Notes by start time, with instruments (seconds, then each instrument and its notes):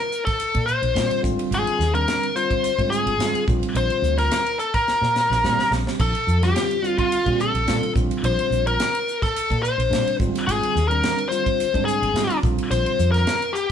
Already playing: lead electric guitar A#4
0.12 hi-hat pedal
0.25 lead electric guitar A4, kick, snare, ride
0.40 hi-hat pedal, ride
0.55 fretless electric bass A#2, kick, ride
0.66 lead electric guitar C5, hi-hat pedal
0.82 fretless electric bass A#1, ride
0.95 fretless electric bass A#2, tine electric piano D3 G3 C4 F4, snare, hi-hat pedal, ride
1.10 muted fretless electric bass stroke, ride
1.22 fretless electric bass G#1, tine electric piano D3 G3 C4 F4, kick, hi-hat pedal
1.39 ride
1.51 fretless electric bass G#1, lead electric guitar G#4, hi-hat pedal, ride
1.67 ride
1.79 fretless electric bass D#2, snare, hi-hat pedal
1.93 tine electric piano D3 G3 C4 D4, lead electric guitar A#4, ride
2.08 snare, hi-hat pedal, ride
2.23 ride
2.35 tine electric piano D3 G3 C4 F4, lead electric guitar C5, hi-hat pedal
2.51 kick, ride
2.64 hi-hat pedal, ride
2.78 fretless electric bass G#2, tine electric piano D3 G3 C4 F4, kick, ride
2.90 lead electric guitar G#4, hi-hat pedal
3.06 fretless electric bass G#1, ride
3.18 fretless electric bass G#2, tine electric piano D3 G3 C4 F4, snare, hi-hat pedal, ride
3.34 muted fretless electric bass stroke, ride
3.48 fretless electric bass A#1, tine electric piano D3 G3 C4 F4, kick, hi-hat pedal
3.63 ride
3.75 fretless electric bass A#1, lead electric guitar C5, hi-hat pedal, ride
3.90 ride
4.02 fretless electric bass D2, hi-hat pedal
4.18 lead electric guitar A#4, snare, ride
4.31 snare, hi-hat pedal, ride
4.46 ride
4.59 lead electric guitar A4, hi-hat pedal
4.74 lead electric guitar A#4, kick, snare, ride
4.88 snare, hi-hat pedal
5.02 fretless electric bass A#2, snare
5.16 snare, hi-hat pedal
5.30 fretless electric bass A#1, snare
5.43 fretless electric bass A#2, tine electric piano D3 G3 C4 G4, snare, hi-hat pedal
5.58 muted fretless electric bass stroke, snare
5.71 fretless electric bass A#1, snare, hi-hat pedal
5.87 snare
6.00 fretless electric bass A#1, lead electric guitar A4, kick, hi-hat pedal, ride, splash
6.15 ride
6.27 fretless electric bass F2, hi-hat pedal
6.41 tine electric piano D3 G3 C4 F4, lead electric guitar G4, snare, ride
6.56 snare, hi-hat pedal, ride
6.71 ride
6.82 tine electric piano D3 G3 C4 F4, hi-hat pedal
6.88 lead electric guitar F4
6.98 lead electric guitar F4, kick, ride
7.12 hi-hat pedal, ride
7.25 fretless electric bass A#2, tine electric piano D3 G3 C4 G4, kick, ride
7.40 lead electric guitar A4, hi-hat pedal
7.54 fretless electric bass A#1, ride
7.66 fretless electric bass A#2, tine electric piano D3 G3 C4 F4, snare, hi-hat pedal, ride
7.82 muted fretless electric bass stroke, ride
7.94 fretless electric bass A#1, tine electric piano D3 G3 C4 F4, kick, hi-hat pedal
8.11 ride
8.23 fretless electric bass A#1, lead electric guitar C5, hi-hat pedal, ride
8.39 ride
8.50 fretless electric bass A#1, hi-hat pedal
8.67 lead electric guitar A#4, ride
8.80 snare, hi-hat pedal, ride
8.95 ride
9.08 hi-hat pedal
9.22 lead electric guitar A4, kick, snare, ride
9.36 hi-hat pedal, ride
9.50 fretless electric bass A#2, kick, ride
9.63 lead electric guitar C5, hi-hat pedal
9.78 fretless electric bass A#1, ride
9.90 fretless electric bass A#2, tine electric piano D3 G3 C4 D4, snare, hi-hat pedal, ride
10.06 muted fretless electric bass stroke, ride
10.19 fretless electric bass G#1, tine electric piano D3 G3 C4 F4, kick, hi-hat pedal
10.35 snare, ride
10.47 fretless electric bass G#1, lead electric guitar G#4, hi-hat pedal, ride
10.63 ride
10.76 fretless electric bass D#2, snare, hi-hat pedal
10.88 tine electric piano D3 G3 C4 D4, lead electric guitar A#4, ride
11.03 snare, hi-hat pedal, ride
11.18 ride
11.29 tine electric piano D3 G3 C4 F4, lead electric guitar C5, hi-hat pedal
11.46 kick, ride
11.60 hi-hat pedal, ride
11.73 fretless electric bass G#2, tine electric piano D3 G3 C4 D4, kick, ride
11.85 lead electric guitar G#4, hi-hat pedal
12.02 fretless electric bass G#1, ride
12.14 fretless electric bass G#2, tine electric piano D3 G3 C4 F4, snare, hi-hat pedal, ride
12.30 muted fretless electric bass stroke, ride
12.43 fretless electric bass A#1, tine electric piano D3 G3 C4 F4, kick, hi-hat pedal
12.58 ride
12.71 fretless electric bass A#1, lead electric guitar C5, hi-hat pedal, ride
12.86 ride
12.99 fretless electric bass F2, hi-hat pedal
13.12 lead electric guitar A#4, snare, ride
13.27 snare, hi-hat pedal, ride
13.42 ride
13.53 lead electric guitar G4, hi-hat pedal